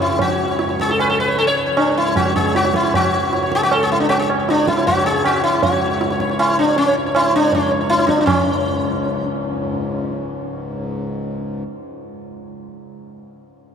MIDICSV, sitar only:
0, 0, Header, 1, 2, 480
1, 0, Start_track
1, 0, Tempo, 392413
1, 239, Time_signature, 7, 2, 24, 8
1, 4076, Tempo, 381679
1, 8396, Tempo, 371747
1, 12236, Tempo, 364078
1, 17520, End_track
2, 0, Start_track
2, 0, Title_t, "Sitar"
2, 0, Program_c, 0, 104
2, 21, Note_on_c, 0, 64, 89
2, 258, Note_off_c, 0, 64, 0
2, 262, Note_on_c, 0, 66, 94
2, 391, Note_on_c, 0, 73, 42
2, 602, Note_off_c, 0, 73, 0
2, 627, Note_on_c, 0, 73, 44
2, 732, Note_off_c, 0, 73, 0
2, 747, Note_on_c, 0, 73, 44
2, 842, Note_off_c, 0, 73, 0
2, 857, Note_on_c, 0, 73, 40
2, 985, Note_off_c, 0, 66, 0
2, 990, Note_on_c, 0, 68, 100
2, 1076, Note_off_c, 0, 73, 0
2, 1102, Note_off_c, 0, 68, 0
2, 1107, Note_on_c, 0, 69, 95
2, 1210, Note_off_c, 0, 69, 0
2, 1226, Note_on_c, 0, 71, 104
2, 1334, Note_off_c, 0, 71, 0
2, 1339, Note_on_c, 0, 69, 96
2, 1446, Note_off_c, 0, 69, 0
2, 1468, Note_on_c, 0, 71, 102
2, 1563, Note_on_c, 0, 73, 44
2, 1689, Note_off_c, 0, 71, 0
2, 1694, Note_on_c, 0, 69, 108
2, 1785, Note_off_c, 0, 73, 0
2, 1794, Note_off_c, 0, 69, 0
2, 1799, Note_on_c, 0, 73, 97
2, 1902, Note_off_c, 0, 73, 0
2, 1917, Note_on_c, 0, 73, 38
2, 2019, Note_off_c, 0, 73, 0
2, 2033, Note_on_c, 0, 73, 42
2, 2164, Note_on_c, 0, 62, 85
2, 2264, Note_off_c, 0, 73, 0
2, 2285, Note_on_c, 0, 73, 41
2, 2410, Note_off_c, 0, 62, 0
2, 2415, Note_on_c, 0, 64, 86
2, 2496, Note_off_c, 0, 73, 0
2, 2510, Note_on_c, 0, 73, 43
2, 2646, Note_off_c, 0, 64, 0
2, 2650, Note_on_c, 0, 66, 97
2, 2741, Note_off_c, 0, 73, 0
2, 2753, Note_on_c, 0, 73, 45
2, 2879, Note_off_c, 0, 66, 0
2, 2883, Note_on_c, 0, 68, 94
2, 2973, Note_off_c, 0, 73, 0
2, 2987, Note_on_c, 0, 73, 45
2, 3124, Note_off_c, 0, 68, 0
2, 3129, Note_on_c, 0, 66, 95
2, 3218, Note_off_c, 0, 73, 0
2, 3234, Note_on_c, 0, 73, 41
2, 3367, Note_off_c, 0, 66, 0
2, 3372, Note_on_c, 0, 64, 94
2, 3460, Note_off_c, 0, 73, 0
2, 3482, Note_on_c, 0, 73, 43
2, 3605, Note_off_c, 0, 64, 0
2, 3610, Note_on_c, 0, 66, 101
2, 3703, Note_off_c, 0, 73, 0
2, 3717, Note_on_c, 0, 73, 43
2, 3827, Note_off_c, 0, 73, 0
2, 3841, Note_on_c, 0, 73, 44
2, 4060, Note_off_c, 0, 73, 0
2, 4088, Note_on_c, 0, 73, 42
2, 4184, Note_off_c, 0, 73, 0
2, 4199, Note_on_c, 0, 73, 44
2, 4345, Note_off_c, 0, 66, 0
2, 4350, Note_on_c, 0, 68, 110
2, 4424, Note_off_c, 0, 73, 0
2, 4449, Note_off_c, 0, 68, 0
2, 4454, Note_on_c, 0, 66, 106
2, 4572, Note_off_c, 0, 66, 0
2, 4572, Note_on_c, 0, 69, 105
2, 4691, Note_off_c, 0, 69, 0
2, 4700, Note_on_c, 0, 68, 102
2, 4805, Note_off_c, 0, 68, 0
2, 4811, Note_on_c, 0, 64, 96
2, 4913, Note_off_c, 0, 64, 0
2, 4918, Note_on_c, 0, 62, 91
2, 5024, Note_off_c, 0, 62, 0
2, 5029, Note_on_c, 0, 66, 111
2, 5155, Note_off_c, 0, 66, 0
2, 5160, Note_on_c, 0, 68, 92
2, 5275, Note_off_c, 0, 68, 0
2, 5278, Note_on_c, 0, 73, 42
2, 5396, Note_off_c, 0, 73, 0
2, 5412, Note_on_c, 0, 73, 44
2, 5545, Note_on_c, 0, 62, 95
2, 5634, Note_off_c, 0, 73, 0
2, 5663, Note_on_c, 0, 73, 41
2, 5766, Note_off_c, 0, 62, 0
2, 5771, Note_on_c, 0, 64, 99
2, 5881, Note_off_c, 0, 73, 0
2, 5896, Note_on_c, 0, 73, 43
2, 6004, Note_off_c, 0, 64, 0
2, 6009, Note_on_c, 0, 66, 107
2, 6117, Note_off_c, 0, 73, 0
2, 6135, Note_on_c, 0, 73, 45
2, 6243, Note_off_c, 0, 66, 0
2, 6248, Note_on_c, 0, 68, 113
2, 6340, Note_off_c, 0, 73, 0
2, 6355, Note_on_c, 0, 73, 41
2, 6487, Note_off_c, 0, 68, 0
2, 6492, Note_on_c, 0, 66, 103
2, 6585, Note_off_c, 0, 73, 0
2, 6615, Note_on_c, 0, 73, 45
2, 6716, Note_off_c, 0, 66, 0
2, 6721, Note_on_c, 0, 64, 99
2, 6835, Note_off_c, 0, 73, 0
2, 6961, Note_off_c, 0, 64, 0
2, 6966, Note_on_c, 0, 66, 93
2, 7085, Note_on_c, 0, 73, 47
2, 7185, Note_off_c, 0, 73, 0
2, 7200, Note_on_c, 0, 73, 44
2, 7301, Note_off_c, 0, 73, 0
2, 7316, Note_on_c, 0, 73, 45
2, 7543, Note_off_c, 0, 73, 0
2, 7582, Note_on_c, 0, 73, 44
2, 7632, Note_off_c, 0, 66, 0
2, 7680, Note_off_c, 0, 73, 0
2, 7695, Note_on_c, 0, 73, 43
2, 7808, Note_off_c, 0, 73, 0
2, 7823, Note_on_c, 0, 73, 47
2, 7924, Note_on_c, 0, 64, 109
2, 8035, Note_off_c, 0, 73, 0
2, 8057, Note_on_c, 0, 73, 43
2, 8167, Note_off_c, 0, 64, 0
2, 8172, Note_on_c, 0, 62, 95
2, 8270, Note_off_c, 0, 73, 0
2, 8298, Note_on_c, 0, 73, 41
2, 8404, Note_off_c, 0, 62, 0
2, 8409, Note_on_c, 0, 61, 91
2, 8511, Note_off_c, 0, 73, 0
2, 8534, Note_on_c, 0, 73, 44
2, 8629, Note_off_c, 0, 61, 0
2, 8647, Note_off_c, 0, 73, 0
2, 8662, Note_on_c, 0, 73, 43
2, 8762, Note_off_c, 0, 73, 0
2, 8778, Note_on_c, 0, 73, 41
2, 8901, Note_on_c, 0, 64, 112
2, 8995, Note_off_c, 0, 73, 0
2, 9029, Note_on_c, 0, 73, 40
2, 9140, Note_off_c, 0, 64, 0
2, 9156, Note_on_c, 0, 62, 104
2, 9235, Note_off_c, 0, 73, 0
2, 9250, Note_on_c, 0, 73, 42
2, 9388, Note_off_c, 0, 62, 0
2, 9403, Note_on_c, 0, 61, 88
2, 9472, Note_off_c, 0, 73, 0
2, 9500, Note_on_c, 0, 73, 43
2, 9595, Note_off_c, 0, 73, 0
2, 9610, Note_off_c, 0, 61, 0
2, 9611, Note_on_c, 0, 73, 45
2, 9722, Note_off_c, 0, 73, 0
2, 9738, Note_on_c, 0, 73, 47
2, 9852, Note_on_c, 0, 64, 114
2, 9950, Note_off_c, 0, 73, 0
2, 9965, Note_on_c, 0, 73, 46
2, 10069, Note_off_c, 0, 64, 0
2, 10074, Note_on_c, 0, 62, 104
2, 10190, Note_off_c, 0, 73, 0
2, 10240, Note_off_c, 0, 62, 0
2, 10255, Note_on_c, 0, 62, 76
2, 10316, Note_off_c, 0, 62, 0
2, 10321, Note_on_c, 0, 61, 85
2, 15602, Note_off_c, 0, 61, 0
2, 17520, End_track
0, 0, End_of_file